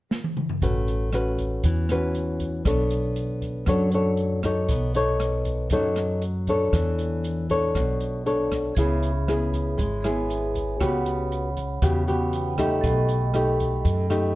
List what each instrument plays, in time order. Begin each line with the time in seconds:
0.11 snare
0.24 high tom
0.37 mid tom
0.49 floor tom
0.62 upright bass A1, nylon-string guitar A3 C#4 F#4 B4, kick, closed hi-hat, shaker
0.87 closed hi-hat, shaker
1.13 nylon-string guitar C#4 F#4 B4, cross-stick, closed hi-hat, shaker
1.38 kick, closed hi-hat, shaker
1.64 upright bass E2, nylon-string guitar E3, kick, closed hi-hat, shaker
1.89 nylon-string guitar C#4 F#4 B4, cross-stick, closed hi-hat, shaker
2.15 closed hi-hat, shaker
2.40 kick, closed hi-hat, shaker
2.65 upright bass B1, nylon-string guitar B3 D4 A4 C#5, kick, cross-stick, closed hi-hat, shaker
2.90 closed hi-hat, shaker
3.16 closed hi-hat, shaker
3.42 kick, closed hi-hat, shaker
3.66 upright bass F#2, nylon-string guitar F#3 D4 A4 C#5, kick, cross-stick, closed hi-hat, shaker
3.92 nylon-string guitar D4 A4 C#5, closed hi-hat, shaker
4.17 closed hi-hat, shaker
4.43 nylon-string guitar D#4 A4 C#5, kick, cross-stick, closed hi-hat, shaker
4.69 upright bass B1, nylon-string guitar B3, kick, closed hi-hat, shaker
4.94 nylon-string guitar D#4 A4 C#5, closed hi-hat, shaker
5.20 cross-stick, closed hi-hat, shaker
5.45 kick, closed hi-hat, shaker
5.70 upright bass F#2, nylon-string guitar F#3 D#4 A4 C#5, kick, closed hi-hat, shaker
5.96 cross-stick, closed hi-hat, shaker
6.22 closed hi-hat, shaker
6.47 nylon-string guitar D4 A4 C#5, kick, closed hi-hat, shaker
6.73 upright bass E2, nylon-string guitar E3, kick, cross-stick, closed hi-hat, shaker
6.99 closed hi-hat, shaker
7.24 closed hi-hat, shaker
7.50 nylon-string guitar D4 A4 C#5, kick, closed hi-hat, shaker
7.75 upright bass B1, nylon-string guitar B2, kick, cross-stick, closed hi-hat, shaker
8.00 closed hi-hat, shaker
8.26 nylon-string guitar D4 A4 C#5, closed hi-hat, shaker
8.52 kick, cross-stick, closed hi-hat, shaker
8.75 upright bass C#2, nylon-string guitar C#3 B3 E4 G#4, vibraphone G#4 C#5 E5, kick, closed hi-hat, shaker
8.81 vibraphone B5
9.03 closed hi-hat, shaker
9.28 nylon-string guitar B3 E4 G#4, cross-stick, closed hi-hat, shaker
9.53 kick, closed hi-hat, shaker
9.78 upright bass G#1, nylon-string guitar G#3, kick, closed hi-hat, shaker
10.02 nylon-string guitar B3 E4 G#4, vibraphone G#4 C#5 E5 G#5, cross-stick, closed hi-hat, shaker
10.30 closed hi-hat, shaker
10.55 kick, closed hi-hat, shaker
10.80 upright bass C#2, nylon-string guitar C#3 B3 F#4 G4, vibraphone C#5 F#5, kick, cross-stick, closed hi-hat, shaker
10.84 vibraphone B5
11.06 closed hi-hat, shaker
11.32 closed hi-hat, shaker
11.57 kick, closed hi-hat, shaker
11.82 upright bass E2, nylon-string guitar C#3 B3 F#4 G4, kick, cross-stick, closed hi-hat, shaker
12.08 nylon-string guitar B3 F#4 G4, vibraphone B5, closed hi-hat, shaker
12.33 vibraphone G5, closed hi-hat, shaker
12.58 nylon-string guitar A3 D#4 G4, vibraphone E5, kick, cross-stick, closed hi-hat, shaker
12.81 upright bass B1, nylon-string guitar B2, vibraphone A4 D#5, kick, closed hi-hat, shaker
12.86 vibraphone G5 B5
13.09 closed hi-hat, shaker
13.34 nylon-string guitar A3 D#4 G4, cross-stick, closed hi-hat, shaker
13.60 kick, closed hi-hat, shaker
13.85 upright bass F#2, kick, closed hi-hat, shaker
14.10 nylon-string guitar A3 D#4 G4, cross-stick, closed hi-hat, shaker